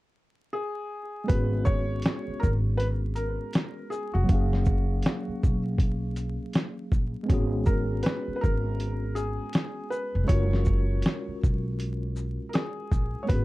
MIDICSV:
0, 0, Header, 1, 6, 480
1, 0, Start_track
1, 0, Tempo, 750000
1, 827, Time_signature, 4, 2, 24, 8
1, 8605, End_track
2, 0, Start_track
2, 0, Title_t, "Felt piano"
2, 0, Program_c, 0, 0
2, 339, Note_on_c, 0, 68, 87
2, 820, Note_on_c, 0, 71, 98
2, 838, Note_off_c, 0, 68, 0
2, 1056, Note_on_c, 0, 73, 114
2, 1071, Note_off_c, 0, 71, 0
2, 1534, Note_on_c, 0, 70, 93
2, 1556, Note_off_c, 0, 73, 0
2, 1589, Note_off_c, 0, 70, 0
2, 1776, Note_on_c, 0, 71, 98
2, 1831, Note_off_c, 0, 71, 0
2, 2018, Note_on_c, 0, 70, 83
2, 2477, Note_off_c, 0, 70, 0
2, 2497, Note_on_c, 0, 68, 79
2, 2647, Note_on_c, 0, 66, 68
2, 2652, Note_off_c, 0, 68, 0
2, 3584, Note_off_c, 0, 66, 0
2, 4903, Note_on_c, 0, 70, 80
2, 5140, Note_on_c, 0, 71, 85
2, 5152, Note_off_c, 0, 70, 0
2, 5340, Note_off_c, 0, 71, 0
2, 5350, Note_on_c, 0, 71, 67
2, 5383, Note_on_c, 0, 70, 98
2, 5386, Note_off_c, 0, 71, 0
2, 5857, Note_on_c, 0, 68, 80
2, 5880, Note_off_c, 0, 70, 0
2, 6339, Note_on_c, 0, 71, 85
2, 6356, Note_off_c, 0, 68, 0
2, 6578, Note_on_c, 0, 73, 102
2, 6590, Note_off_c, 0, 71, 0
2, 7277, Note_off_c, 0, 73, 0
2, 7995, Note_on_c, 0, 70, 55
2, 8024, Note_on_c, 0, 68, 77
2, 8029, Note_off_c, 0, 70, 0
2, 8466, Note_on_c, 0, 73, 59
2, 8484, Note_off_c, 0, 68, 0
2, 8502, Note_on_c, 0, 71, 93
2, 8504, Note_off_c, 0, 73, 0
2, 8605, Note_off_c, 0, 71, 0
2, 8605, End_track
3, 0, Start_track
3, 0, Title_t, "Tine electric piano"
3, 0, Program_c, 1, 4
3, 794, Note_on_c, 1, 56, 62
3, 812, Note_on_c, 1, 59, 53
3, 828, Note_on_c, 1, 61, 54
3, 844, Note_on_c, 1, 66, 54
3, 863, Note_on_c, 1, 68, 62
3, 953, Control_c, 1, 64, 127
3, 2705, Note_off_c, 1, 56, 0
3, 2713, Note_on_c, 1, 54, 67
3, 2714, Note_off_c, 1, 59, 0
3, 2722, Note_off_c, 1, 61, 0
3, 2728, Note_on_c, 1, 58, 56
3, 2730, Note_off_c, 1, 66, 0
3, 2739, Note_off_c, 1, 68, 0
3, 2747, Note_on_c, 1, 61, 56
3, 2755, Control_c, 1, 64, 0
3, 2763, Note_on_c, 1, 77, 54
3, 2781, Note_on_c, 1, 68, 70
3, 2872, Control_c, 1, 64, 127
3, 4625, Note_off_c, 1, 54, 0
3, 4629, Note_on_c, 1, 56, 66
3, 4632, Note_off_c, 1, 58, 0
3, 4641, Note_off_c, 1, 61, 0
3, 4645, Note_on_c, 1, 59, 57
3, 4650, Note_off_c, 1, 77, 0
3, 4658, Note_off_c, 1, 68, 0
3, 4663, Note_on_c, 1, 61, 69
3, 4676, Control_c, 1, 64, 0
3, 4679, Note_on_c, 1, 66, 62
3, 4697, Note_on_c, 1, 68, 76
3, 4785, Control_c, 1, 64, 127
3, 6542, Note_off_c, 1, 56, 0
3, 6550, Note_off_c, 1, 59, 0
3, 6553, Note_on_c, 1, 56, 63
3, 6559, Note_off_c, 1, 61, 0
3, 6568, Note_off_c, 1, 66, 0
3, 6571, Note_on_c, 1, 61, 55
3, 6576, Note_off_c, 1, 68, 0
3, 6587, Note_on_c, 1, 65, 53
3, 6595, Control_c, 1, 64, 0
3, 6604, Note_on_c, 1, 66, 56
3, 6620, Note_on_c, 1, 70, 68
3, 6695, Control_c, 1, 64, 127
3, 8465, Note_off_c, 1, 56, 0
3, 8473, Note_off_c, 1, 61, 0
3, 8473, Note_on_c, 1, 56, 54
3, 8482, Note_off_c, 1, 65, 0
3, 8489, Note_on_c, 1, 59, 53
3, 8490, Note_off_c, 1, 66, 0
3, 8498, Note_off_c, 1, 70, 0
3, 8506, Note_on_c, 1, 61, 54
3, 8516, Control_c, 1, 64, 0
3, 8523, Note_on_c, 1, 66, 55
3, 8540, Note_on_c, 1, 68, 66
3, 8605, Note_off_c, 1, 56, 0
3, 8605, Note_off_c, 1, 59, 0
3, 8605, Note_off_c, 1, 61, 0
3, 8605, Note_off_c, 1, 66, 0
3, 8605, Note_off_c, 1, 68, 0
3, 8605, End_track
4, 0, Start_track
4, 0, Title_t, "Upright bass"
4, 0, Program_c, 2, 32
4, 829, Note_on_c, 2, 32, 91
4, 1283, Note_off_c, 2, 32, 0
4, 1560, Note_on_c, 2, 32, 85
4, 2153, Note_off_c, 2, 32, 0
4, 2654, Note_on_c, 2, 29, 89
4, 2742, Note_off_c, 2, 29, 0
4, 2748, Note_on_c, 2, 30, 99
4, 3202, Note_off_c, 2, 30, 0
4, 3480, Note_on_c, 2, 35, 86
4, 4073, Note_off_c, 2, 35, 0
4, 4430, Note_on_c, 2, 34, 77
4, 4564, Note_off_c, 2, 34, 0
4, 4672, Note_on_c, 2, 32, 97
4, 5124, Note_off_c, 2, 32, 0
4, 5402, Note_on_c, 2, 32, 88
4, 5994, Note_off_c, 2, 32, 0
4, 6496, Note_on_c, 2, 29, 89
4, 6583, Note_off_c, 2, 29, 0
4, 6591, Note_on_c, 2, 30, 97
4, 7044, Note_off_c, 2, 30, 0
4, 7319, Note_on_c, 2, 35, 80
4, 7913, Note_off_c, 2, 35, 0
4, 8270, Note_on_c, 2, 34, 79
4, 8404, Note_off_c, 2, 34, 0
4, 8510, Note_on_c, 2, 32, 99
4, 8605, Note_off_c, 2, 32, 0
4, 8605, End_track
5, 0, Start_track
5, 0, Title_t, "Muted upright bass strokes"
5, 1458, Note_on_c, 9, 29, 47
5, 1522, Note_off_c, 9, 29, 0
5, 3377, Note_on_c, 9, 29, 48
5, 3441, Note_off_c, 9, 29, 0
5, 5298, Note_on_c, 9, 29, 46
5, 5362, Note_off_c, 9, 29, 0
5, 7218, Note_on_c, 9, 29, 46
5, 7282, Note_off_c, 9, 29, 0
5, 8605, End_track
6, 0, Start_track
6, 0, Title_t, "Drums"
6, 828, Note_on_c, 9, 42, 87
6, 829, Note_on_c, 9, 36, 117
6, 892, Note_off_c, 9, 42, 0
6, 893, Note_off_c, 9, 36, 0
6, 1058, Note_on_c, 9, 82, 38
6, 1068, Note_on_c, 9, 36, 93
6, 1122, Note_off_c, 9, 82, 0
6, 1132, Note_off_c, 9, 36, 0
6, 1294, Note_on_c, 9, 42, 64
6, 1316, Note_on_c, 9, 38, 97
6, 1358, Note_off_c, 9, 42, 0
6, 1380, Note_off_c, 9, 38, 0
6, 1557, Note_on_c, 9, 82, 46
6, 1558, Note_on_c, 9, 36, 78
6, 1621, Note_off_c, 9, 82, 0
6, 1622, Note_off_c, 9, 36, 0
6, 1790, Note_on_c, 9, 42, 63
6, 1854, Note_off_c, 9, 42, 0
6, 2021, Note_on_c, 9, 42, 42
6, 2021, Note_on_c, 9, 82, 41
6, 2085, Note_off_c, 9, 42, 0
6, 2085, Note_off_c, 9, 82, 0
6, 2261, Note_on_c, 9, 42, 66
6, 2274, Note_on_c, 9, 38, 97
6, 2325, Note_off_c, 9, 42, 0
6, 2338, Note_off_c, 9, 38, 0
6, 2508, Note_on_c, 9, 82, 43
6, 2572, Note_off_c, 9, 82, 0
6, 2745, Note_on_c, 9, 42, 85
6, 2747, Note_on_c, 9, 36, 102
6, 2809, Note_off_c, 9, 42, 0
6, 2811, Note_off_c, 9, 36, 0
6, 2900, Note_on_c, 9, 38, 32
6, 2964, Note_off_c, 9, 38, 0
6, 2976, Note_on_c, 9, 82, 39
6, 2987, Note_on_c, 9, 36, 88
6, 3040, Note_off_c, 9, 82, 0
6, 3051, Note_off_c, 9, 36, 0
6, 3216, Note_on_c, 9, 42, 60
6, 3238, Note_on_c, 9, 38, 100
6, 3280, Note_off_c, 9, 42, 0
6, 3302, Note_off_c, 9, 38, 0
6, 3478, Note_on_c, 9, 36, 86
6, 3478, Note_on_c, 9, 82, 44
6, 3542, Note_off_c, 9, 36, 0
6, 3542, Note_off_c, 9, 82, 0
6, 3702, Note_on_c, 9, 36, 90
6, 3710, Note_on_c, 9, 42, 63
6, 3766, Note_off_c, 9, 36, 0
6, 3774, Note_off_c, 9, 42, 0
6, 3944, Note_on_c, 9, 42, 43
6, 3944, Note_on_c, 9, 82, 42
6, 4008, Note_off_c, 9, 42, 0
6, 4008, Note_off_c, 9, 82, 0
6, 4182, Note_on_c, 9, 42, 57
6, 4195, Note_on_c, 9, 38, 103
6, 4246, Note_off_c, 9, 42, 0
6, 4259, Note_off_c, 9, 38, 0
6, 4427, Note_on_c, 9, 36, 83
6, 4432, Note_on_c, 9, 82, 44
6, 4491, Note_off_c, 9, 36, 0
6, 4496, Note_off_c, 9, 82, 0
6, 4669, Note_on_c, 9, 36, 112
6, 4670, Note_on_c, 9, 42, 85
6, 4733, Note_off_c, 9, 36, 0
6, 4734, Note_off_c, 9, 42, 0
6, 4901, Note_on_c, 9, 82, 39
6, 4908, Note_on_c, 9, 36, 95
6, 4965, Note_off_c, 9, 82, 0
6, 4972, Note_off_c, 9, 36, 0
6, 5138, Note_on_c, 9, 42, 67
6, 5160, Note_on_c, 9, 38, 101
6, 5202, Note_off_c, 9, 42, 0
6, 5224, Note_off_c, 9, 38, 0
6, 5399, Note_on_c, 9, 36, 79
6, 5401, Note_on_c, 9, 82, 41
6, 5463, Note_off_c, 9, 36, 0
6, 5465, Note_off_c, 9, 82, 0
6, 5631, Note_on_c, 9, 42, 64
6, 5695, Note_off_c, 9, 42, 0
6, 5863, Note_on_c, 9, 42, 42
6, 5863, Note_on_c, 9, 82, 47
6, 5927, Note_off_c, 9, 42, 0
6, 5927, Note_off_c, 9, 82, 0
6, 6099, Note_on_c, 9, 42, 65
6, 6113, Note_on_c, 9, 38, 103
6, 6163, Note_off_c, 9, 42, 0
6, 6177, Note_off_c, 9, 38, 0
6, 6348, Note_on_c, 9, 82, 43
6, 6412, Note_off_c, 9, 82, 0
6, 6586, Note_on_c, 9, 42, 89
6, 6588, Note_on_c, 9, 36, 110
6, 6650, Note_off_c, 9, 42, 0
6, 6652, Note_off_c, 9, 36, 0
6, 6741, Note_on_c, 9, 38, 34
6, 6805, Note_off_c, 9, 38, 0
6, 6816, Note_on_c, 9, 82, 38
6, 6827, Note_on_c, 9, 36, 91
6, 6880, Note_off_c, 9, 82, 0
6, 6891, Note_off_c, 9, 36, 0
6, 7055, Note_on_c, 9, 42, 67
6, 7078, Note_on_c, 9, 38, 98
6, 7119, Note_off_c, 9, 42, 0
6, 7142, Note_off_c, 9, 38, 0
6, 7319, Note_on_c, 9, 36, 79
6, 7320, Note_on_c, 9, 82, 41
6, 7383, Note_off_c, 9, 36, 0
6, 7384, Note_off_c, 9, 82, 0
6, 7550, Note_on_c, 9, 42, 63
6, 7614, Note_off_c, 9, 42, 0
6, 7783, Note_on_c, 9, 82, 47
6, 7847, Note_off_c, 9, 82, 0
6, 8021, Note_on_c, 9, 42, 64
6, 8034, Note_on_c, 9, 38, 101
6, 8085, Note_off_c, 9, 42, 0
6, 8098, Note_off_c, 9, 38, 0
6, 8266, Note_on_c, 9, 36, 81
6, 8269, Note_on_c, 9, 82, 46
6, 8330, Note_off_c, 9, 36, 0
6, 8333, Note_off_c, 9, 82, 0
6, 8508, Note_on_c, 9, 36, 107
6, 8509, Note_on_c, 9, 42, 88
6, 8572, Note_off_c, 9, 36, 0
6, 8573, Note_off_c, 9, 42, 0
6, 8605, End_track
0, 0, End_of_file